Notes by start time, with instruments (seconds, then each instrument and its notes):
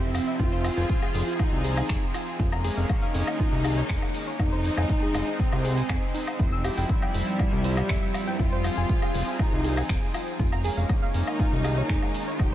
Already playing: analog synth bass F1, analog synth pad F3 C4 E4, violin section C4, analog synth lead C4
0.02 shaker
0.14 open hi-hat, low woodblock, shaker
0.27 synth arpeggio sound E5, shaker
0.39 analog synth bass F1, analog synth pad F3 G#4, synth arpeggio sound F4, violin section F4, analog synth lead F4, kick, shaker
0.52 synth arpeggio sound C5, shaker
0.64 open hi-hat, low woodblock, shaker
0.76 analog synth bass F1, synth arpeggio sound G#5, shaker
0.89 kick, shaker
1.02 synth arpeggio sound G#4, low woodblock, shaker
1.14 analog synth bass F1, open hi-hat, shaker
1.27 synth arpeggio sound F4, shaker
1.39 analog synth lead D#4, violin section D#4, kick, low woodblock, shaker
1.53 analog synth bass C2, shaker
1.64 synth arpeggio sound G#4, open hi-hat, shaker
1.77 synth arpeggio sound G#5, open hi-hat, low woodblock, shaker
1.89 analog synth bass F1, finger snap, kick, shaker
2.02 shaker
2.14 synth arpeggio sound F4, open hi-hat, low woodblock, shaker
2.27 shaker
2.39 analog synth bass F1, analog synth pad G#3 A#3 C#4, synth arpeggio sound F4, kick, shaker
2.52 synth arpeggio sound A#5, low woodblock, shaker
2.64 synth arpeggio sound G#4, open hi-hat, shaker
2.77 analog synth bass F1, synth arpeggio sound F5, shaker
2.89 violin section D#4, analog synth lead D#4, kick, low woodblock, shaker
3.02 synth arpeggio sound F5, shaker
3.14 analog synth bass F1, open hi-hat, shaker
3.27 low woodblock, shaker
3.39 synth arpeggio sound F4, kick, shaker
3.52 analog synth bass C2, shaker
3.64 synth arpeggio sound G#4, open hi-hat, low woodblock, shaker
3.77 synth arpeggio sound C#5, shaker
3.89 analog synth bass F1, synth arpeggio sound G#4, finger snap, kick, shaker
4.02 low woodblock, shaker
4.14 open hi-hat, shaker
4.27 synth arpeggio sound C#5, shaker
4.39 analog synth bass F1, analog synth pad G#3 C4 D#4, synth arpeggio sound D#4, analog synth lead D#4, violin section D#4, kick, low woodblock, shaker
4.52 synth arpeggio sound C5, shaker
4.64 open hi-hat, shaker
4.77 analog synth bass F1, synth arpeggio sound G#5, low woodblock, shaker
4.89 kick, shaker
5.02 synth arpeggio sound G#4, shaker
5.14 analog synth bass F1, open hi-hat, low woodblock, shaker
5.27 synth arpeggio sound D#4, shaker
5.39 violin section C4, analog synth lead C4, kick, shaker
5.52 analog synth bass C2, low woodblock, shaker
5.64 synth arpeggio sound G#4, open hi-hat, shaker
5.77 synth arpeggio sound G#5, open hi-hat, shaker
5.89 analog synth bass F1, finger snap, kick, low woodblock, shaker
6.02 shaker
6.14 synth arpeggio sound D#4, open hi-hat, shaker
6.27 low woodblock, shaker
6.39 analog synth bass F1, analog synth pad F3 E4, synth arpeggio sound E4, kick, shaker
6.52 synth arpeggio sound E6, shaker
6.64 synth arpeggio sound G4, open hi-hat, low woodblock, shaker
6.77 analog synth bass F1, synth arpeggio sound G5, open hi-hat, shaker
6.89 violin section G3, analog synth lead G3, kick, shaker
7.02 synth arpeggio sound G5, low woodblock, shaker
7.14 analog synth bass F1, open hi-hat, shaker
7.27 shaker
7.39 synth arpeggio sound E4, kick, low woodblock, shaker
7.52 analog synth bass C2, shaker
7.64 synth arpeggio sound C5, open hi-hat, shaker
7.77 synth arpeggio sound G4, low woodblock, shaker
7.89 analog synth bass F1, synth arpeggio sound E5, finger snap, kick, shaker
8.02 synth arpeggio sound E5, shaker
8.14 open hi-hat, low woodblock, shaker
8.27 synth arpeggio sound G5, shaker
8.39 analog synth bass F1, analog synth pad F3 C4 G#4, synth arpeggio sound F4, violin section F4, analog synth lead F4, kick, shaker
8.52 synth arpeggio sound C5, shaker
8.64 open hi-hat, low woodblock, shaker
8.77 analog synth bass F1, synth arpeggio sound G#5, shaker
8.89 kick, shaker
9.02 synth arpeggio sound G#4, low woodblock, shaker
9.14 analog synth bass F1, open hi-hat, shaker
9.27 synth arpeggio sound F4, shaker
9.39 analog synth lead D#4, violin section D#4, kick, low woodblock, shaker
9.51 analog synth bass C2, shaker
9.64 synth arpeggio sound G#4, open hi-hat, shaker
9.77 synth arpeggio sound G#5, open hi-hat, low woodblock, shaker
9.89 analog synth bass F1, finger snap, kick, shaker
10.02 shaker
10.14 synth arpeggio sound F4, open hi-hat, low woodblock, shaker
10.27 shaker
10.39 analog synth bass F1, analog synth pad G#3 A#3 C#4, synth arpeggio sound F4, kick, shaker
10.52 synth arpeggio sound A#5, low woodblock, shaker
10.64 synth arpeggio sound G#4, open hi-hat, shaker
10.77 analog synth bass F1, synth arpeggio sound F5, shaker
10.89 violin section D#4, analog synth lead D#4, kick, low woodblock, shaker
11.02 synth arpeggio sound F5, shaker
11.14 analog synth bass F1, open hi-hat, shaker
11.27 low woodblock, shaker
11.39 synth arpeggio sound F4, kick, shaker
11.52 analog synth bass C2, shaker
11.64 synth arpeggio sound G#4, open hi-hat, low woodblock, shaker
11.77 synth arpeggio sound C#5, shaker
11.89 analog synth bass F1, synth arpeggio sound G#4, finger snap, kick, shaker
12.02 low woodblock, shaker
12.14 open hi-hat, shaker
12.27 synth arpeggio sound C#5, shaker
12.39 analog synth bass F1, analog synth pad C4 D#4, synth arpeggio sound D#4, analog synth lead G4, violin section G4, kick, low woodblock, shaker